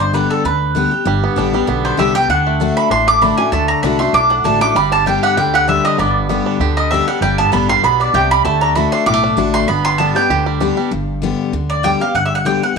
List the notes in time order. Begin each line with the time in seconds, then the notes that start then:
Already playing: G1 G2
0.00 C5
0.13 D3 G3 B3 G4 B4
0.30 A4
0.44 D2 D3 B4
0.75 D3 G3 B3 G4
0.91 B3 G4
1.05 G1 G2 G3
1.24 B3
1.36 A1 D3 G3 B3 D4 G4
1.53 G3 B3 G4
1.67 B1 D3 B3
1.85 D4 C5
1.97 C2 D3 G3 B3 G4 E5
2.14 G3 G4 G5
2.28 D2 D3 D4 F#5
2.47 A3
2.60 D3 A3 D4 F#4
2.77 D4 B5
2.90 A1 A2 D4 C6
3.07 A3 D6
3.21 D3 A3 D4 F#4 B5
3.38 A3 D4 F#4 G#5
3.52 D2 D3 A3 A5
3.68 A#5
3.82 C2 D3 A3 D4 F#4 B5
3.99 A3 D4 F#4 C6
4.13 B1 A2 D4 D6
4.30 D4 F#5
4.44 A1 D3 A3 D4 F#4 A5
4.61 A3 D4 F#4 D6
4.75 G1 G2 G3 B5
4.92 D4 A5
5.06 D3 G3 B3 G4 G5
5.23 G4 F#5
5.37 D2 D3 G3 G5
5.54 G4 F#5
5.68 D3 G3 B3 D4 G4 E5
5.84 G3 D#5
5.98 G1 G2 B3 D5
6.29 D3 G3 B3 G4
6.46 D4
6.60 D2 D3 G4
6.77 G3 D#5
6.91 D3 G3 B3 D4 G4 E5
7.07 G3 B3 G4 F#5
7.21 G1 G2 G3 G5
7.38 B3 A5
7.52 A1 D3 G3 B3 D4 G4 B5
7.69 G3 B3 G4 C6
7.83 B1 B2 B3 B5
8.00 D4 D5
8.14 C2 C3 G4 G5
8.31 G3 B5
8.45 D2 D3 A3 A5
8.61 D4 A#5
8.75 D3 A3 D4 F#4 B5
8.92 D4 C6
9.06 B1 A2 G3 D6
9.13 A3
9.24 D4
9.37 A1 D3 A3 D4 F#4
9.54 A3 C6
9.68 G1 G2 B3 B5
9.85 G3 C6
9.98 D3 G3 B3 G4 A5
10.15 B3 D4 G4 G5
10.30 D2 D3 G4
10.46 G3
10.60 D3 G3 B3 D4 G4
10.77 G3 B3 G4
10.91 G1 G2
11.22 D3 G3 B3 G4
11.53 D2 D3
11.70 D5
11.83 D3 G3 B3 G4 G5
12.00 B3 G4 F5
12.15 G1 G2 F#5
12.25 E5
12.35 F#5
12.45 D3 G3 B3 G4 G5
12.62 B3 G4 F#5